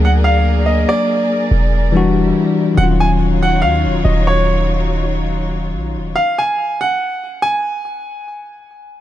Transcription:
Already playing: D2 F#3 A#3 D4 G#4 A#4 D5
0.05 F#5
0.24 F5
0.66 D#5
0.89 D5
1.51 E1
1.92 E3 G3 D4 E4
1.97 F#4
2.75 D#1 D#3 F#3 D#4 F4 C#5 F#5
2.80 C#4 F4
3.00 G#5
3.43 F#5
3.62 D#2 F5
3.86 D#1
4.04 D#1 D#5
4.27 C#5
5.74 A#1
5.97 D#1
6.16 F5
6.38 G#5
6.81 F#5
7.42 G#5

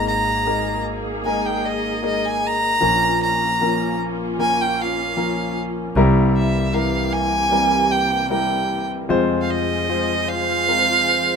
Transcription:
Already playing: G#1 G#2 G#3 A#3 D#4 G#4 A#4
0.08 A#5
0.46 G#3 A#3 D#4 A#4
1.25 G#3 A#3 D#4 A#4 G#5
1.46 G5
1.65 D#5
2.02 G#3 A#3 D#4 A#4 D#5
2.25 G#5
2.46 A#5
2.80 A#1 A#2 F3 A#3 C#4 F4 A#4
3.23 A#5
3.61 F3 A#3 C#4 A#4
4.38 F3 A#3 C#4 A#4 G#5
4.61 G5
4.82 F5
5.17 F3 A#3 C#4 A#4
5.95 C2 C3 E3 G3 A#3 C4 E4 A#4
6.37 E5
6.74 E3 G3 C4 A#4 F5
7.13 G#5
7.51 G3 C4 E4 A#4
7.91 G5
8.30 G3 C4 E4 A#4 G5
9.09 F1 F2 F3 G#3 C4 F4 G#4 C5
9.41 F5
9.50 D#5
9.88 G#3 C4 F4 C5
10.28 F5
10.68 G#3 C4 F4 A#4

